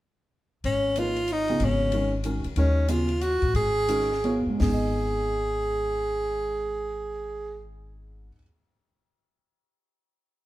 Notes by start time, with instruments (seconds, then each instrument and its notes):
0.64 upright bass G#1, tenor saxophone C#4, ride
0.96 grand piano F3 A#3 D#4 G#4 B4, tenor saxophone F4, hi-hat pedal, ride
1.16 ride
1.28 hi-hat pedal, ride
1.32 tenor saxophone D#4
1.48 grand piano C#3 F#3 B3 F4 G#4, ride
1.60 upright bass G#1, ride
1.65 tenor saxophone C#4
1.92 grand piano D#3 G#3 C#4 F#4 A#4, ride
2.24 grand piano D#3 G#3 C#4 F#4 A#4, hi-hat pedal, ride
2.44 muted upright bass stroke, ride
2.56 upright bass D#2, grand piano D#3 G#3 C#4 F#4 A#4, tenor saxophone C#4, ride
2.88 grand piano C#3 F#3 B3 F4 G#4, tenor saxophone F4, hi-hat pedal, ride
3.09 ride
3.21 tenor saxophone F#4, hi-hat pedal, ride
3.42 upright bass A1, kick, ride
3.54 upright bass G#1, tenor saxophone G#4, ride
3.88 grand piano D#3 G#3 C#4 F#4 A#4, hi-hat pedal, ride
4.00 snare
4.12 snare
4.24 grand piano F#3 B3 F4 A#4 C#5, ride
4.46 grand piano G#2, muted upright bass stroke
4.55 grand piano G#3
4.60 upright bass G#1, grand piano B3, tenor saxophone G#4, kick, snare, open hi-hat
4.67 grand piano D#4
4.73 grand piano D#5